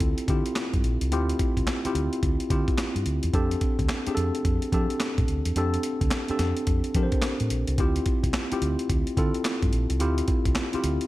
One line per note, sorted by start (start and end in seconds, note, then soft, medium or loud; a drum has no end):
0.00 0.13 D2 medium
0.00 0.29 C4 medium
0.00 0.29 E4 medium
0.00 0.30 F4 medium
0.00 0.30 G4 loud
0.00 3.35 A4 medium
0.00 kick medium
0.00 closed hi-hat medium
0.18 closed hi-hat medium
0.28 0.41 D3 medium
0.28 0.84 C4 medium
0.28 0.84 E4 medium
0.28 0.84 F4 medium
0.28 0.85 G4 medium
0.28 kick medium
0.28 closed hi-hat medium
0.46 closed hi-hat medium
0.56 snare loud
0.56 clap medium
0.56 closed hi-hat medium
0.74 0.81 G2 loud
0.74 kick loud
0.74 closed hi-hat medium
0.84 0.97 A#1 medium
0.84 closed hi-hat medium
1.01 1.11 C2 medium
1.01 closed hi-hat medium
1.11 1.31 D2 loud
1.11 1.60 C4 loud
1.11 1.61 E4 medium
1.11 1.61 F4 medium
1.11 1.61 G4 loud
1.11 closed hi-hat medium
1.29 closed hi-hat medium
1.39 kick loud
1.39 closed hi-hat medium
1.57 1.64 C2 medium
1.57 kick medium
1.57 closed hi-hat medium
1.67 snare loud
1.67 clap loud
1.67 closed hi-hat medium
1.85 2.29 C4 medium
1.85 2.29 E4 medium
1.85 2.29 F4 medium
1.85 2.29 G4 medium
1.85 muted fingered electric bass stroke soft
1.85 closed hi-hat medium
1.95 2.07 D2 medium
1.95 closed hi-hat medium
2.13 closed hi-hat soft
2.23 2.35 D2 medium
2.23 kick medium
2.23 closed hi-hat medium
2.40 closed hi-hat medium
2.50 2.63 D3 medium
2.50 3.06 C4 medium
2.50 3.06 E4 medium
2.50 3.06 F4 medium
2.50 3.06 G4 medium
2.50 kick medium
2.50 closed hi-hat medium
2.68 kick medium
2.68 closed hi-hat medium
2.78 snare loud
2.78 clap medium
2.78 closed hi-hat medium
2.96 3.03 G2 medium
2.96 closed hi-hat medium
3.06 3.18 D2 loud
3.06 closed hi-hat medium
3.23 3.31 E2 medium
3.23 closed hi-hat medium
3.34 3.54 F2 loud
3.34 3.82 C4 loud
3.34 3.83 D4 medium
3.34 3.83 G4 medium
3.34 3.83 A4 loud
3.34 kick loud
3.34 closed hi-hat medium
3.51 closed hi-hat medium
3.61 kick medium
3.61 closed hi-hat medium
3.79 3.86 D2 medium
3.79 kick medium
3.79 closed hi-hat medium
3.89 snare loud
3.89 clap medium
3.89 closed hi-hat medium
4.07 4.51 C4 medium
4.07 4.51 D4 medium
4.07 4.51 G4 medium
4.07 4.12 G#4 medium
4.07 muted fingered electric bass stroke soft
4.07 closed hi-hat soft
4.15 4.30 F2 medium
4.15 4.55 A4 medium
4.15 closed hi-hat medium
4.35 closed hi-hat medium
4.45 4.58 F2 medium
4.45 kick medium
4.45 closed hi-hat medium
4.62 closed hi-hat medium
4.72 4.85 F3 medium
4.72 5.28 C4 medium
4.72 5.29 D4 medium
4.72 5.29 G4 medium
4.72 5.29 A4 medium
4.72 kick medium
4.72 closed hi-hat medium
4.90 closed hi-hat medium
5.00 snare loud
5.00 clap medium
5.00 closed hi-hat medium
5.18 5.25 A2 medium
5.18 kick medium
5.18 closed hi-hat soft
5.28 5.41 D2 medium
5.28 closed hi-hat medium
5.45 5.53 E2 medium
5.45 closed hi-hat medium
5.56 5.76 F2 loud
5.56 6.05 C4 medium
5.56 6.05 D4 medium
5.56 6.05 G4 medium
5.56 6.06 A4 loud
5.56 closed hi-hat medium
5.74 closed hi-hat medium
5.83 closed hi-hat medium
6.01 6.09 D2 medium
6.01 kick medium
6.01 closed hi-hat medium
6.11 snare loud
6.11 clap loud
6.11 closed hi-hat medium
6.28 6.73 C4 medium
6.28 6.73 D4 medium
6.28 6.74 G4 medium
6.28 6.74 A4 medium
6.28 muted fingered electric bass stroke soft
6.28 closed hi-hat soft
6.39 6.52 F2 medium
6.39 snare medium
6.39 closed hi-hat medium
6.57 closed hi-hat soft
6.67 6.80 F2 medium
6.67 kick medium
6.67 closed hi-hat medium
6.84 closed hi-hat medium
6.94 7.07 F3 medium
6.94 7.51 C4 medium
6.94 7.51 D4 medium
6.94 7.51 G4 medium
6.94 7.04 A#4 medium
6.94 kick medium
6.94 closed hi-hat medium
7.03 7.54 C5 medium
7.12 kick medium
7.12 closed hi-hat medium
7.22 snare loud
7.22 clap medium
7.22 closed hi-hat medium
7.40 7.48 A2 medium
7.40 closed hi-hat medium
7.50 7.63 A#1 medium
7.50 closed hi-hat medium
7.67 7.75 C2 medium
7.67 closed hi-hat medium
7.78 7.98 D2 loud
7.78 8.27 C4 medium
7.78 8.28 E4 medium
7.78 8.28 F4 medium
7.78 8.28 G4 loud
7.78 kick loud
7.78 closed hi-hat medium
7.96 closed hi-hat medium
8.06 kick loud
8.06 closed hi-hat medium
8.23 8.31 C2 medium
8.23 kick medium
8.23 closed hi-hat medium
8.34 snare loud
8.34 clap loud
8.34 closed hi-hat medium
8.52 8.95 C4 medium
8.52 8.95 E4 medium
8.52 8.96 F4 medium
8.52 8.96 G4 loud
8.52 muted fingered electric bass stroke soft
8.52 closed hi-hat medium
8.62 8.74 D2 medium
8.62 closed hi-hat medium
8.79 closed hi-hat soft
8.90 9.02 D2 medium
8.90 kick medium
8.90 closed hi-hat medium
9.07 closed hi-hat medium
9.17 9.30 D3 medium
9.17 9.73 C4 medium
9.17 9.73 E4 medium
9.17 9.73 F4 medium
9.17 9.73 A4 medium
9.17 kick medium
9.17 closed hi-hat medium
9.34 closed hi-hat medium
9.45 snare loud
9.45 clap medium
9.45 closed hi-hat medium
9.63 9.70 G2 loud
9.63 kick medium
9.63 closed hi-hat medium
9.73 9.85 A#1 medium
9.73 closed hi-hat medium
9.90 10.00 C2 medium
9.90 closed hi-hat medium
10.00 10.20 D2 loud
10.00 10.49 C4 loud
10.00 10.49 E4 medium
10.00 10.49 F4 medium
10.00 10.50 G4 loud
10.00 closed hi-hat medium
10.18 closed hi-hat medium
10.28 kick loud
10.28 closed hi-hat medium
10.45 10.53 C2 medium
10.45 kick medium
10.45 closed hi-hat medium
10.55 snare loud
10.55 clap medium
10.55 closed hi-hat medium
10.73 11.07 C4 medium
10.73 11.07 E4 medium
10.73 11.07 F4 medium
10.73 11.07 G4 medium
10.73 muted fingered electric bass stroke soft
10.73 closed hi-hat medium
10.84 10.96 D2 medium
10.84 closed hi-hat medium
11.01 closed hi-hat medium